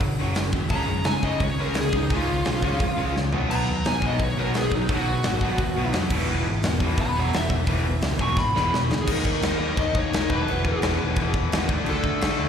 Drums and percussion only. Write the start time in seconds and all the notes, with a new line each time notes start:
0.01 kick, open hi-hat
0.35 snare, open hi-hat
0.53 kick
0.69 kick, open hi-hat
1.04 snare, open hi-hat
1.23 kick
1.40 kick, open hi-hat
1.74 snare, open hi-hat
1.93 kick
2.10 kick, open hi-hat
2.45 snare, open hi-hat
2.63 kick
2.80 kick, open hi-hat
3.16 snare
3.33 floor tom
3.51 crash
3.85 snare, open hi-hat
4.02 kick
4.20 kick, open hi-hat
4.54 snare, open hi-hat
4.72 kick
4.89 kick, open hi-hat
5.23 snare, open hi-hat
5.41 kick
5.58 kick, open hi-hat
5.93 snare, open hi-hat
6.10 kick, crash
6.63 snare, open hi-hat
6.80 kick
6.98 kick, open hi-hat
7.33 snare, open hi-hat
7.50 kick
7.67 kick, open hi-hat
8.01 snare, open hi-hat
8.19 kick
8.37 kick, snare
8.56 snare
8.74 snare
8.92 snare
9.08 kick, crash
9.25 kick
9.42 snare, crash
9.77 kick, crash
9.95 kick
10.13 snare, crash
10.30 kick
10.48 crash
10.65 kick
10.82 snare, crash
11.16 kick, crash
11.34 kick
11.52 snare, crash
11.69 kick
11.86 crash
12.04 kick
12.21 snare, crash